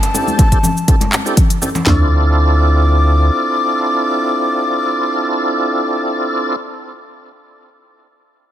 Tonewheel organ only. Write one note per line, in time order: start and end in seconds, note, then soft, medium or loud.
0.14 0.49 C4 medium
0.14 0.49 D4 medium
0.14 0.49 E4 medium
0.14 0.49 G4 medium
0.14 0.49 A4 medium
0.52 0.59 C4 medium
0.52 0.59 D4 medium
0.52 0.59 E4 medium
0.52 0.59 G4 medium
0.52 0.59 A4 medium
0.88 0.96 C4 medium
0.88 0.96 D4 medium
0.88 0.96 E4 medium
0.88 0.96 G4 medium
0.88 0.96 A4 loud
1.26 1.36 C4 medium
1.26 1.36 D4 medium
1.26 1.36 E4 medium
1.26 1.37 G4 medium
1.26 1.36 A4 medium
1.62 1.69 C4 medium
1.62 1.69 D4 medium
1.62 1.69 E4 medium
1.62 1.69 G4 medium
1.62 1.69 A4 medium
1.86 6.56 C4 medium
1.86 6.56 D4 medium
1.86 6.56 E4 medium
1.86 6.56 F4 medium
1.86 6.56 A4 medium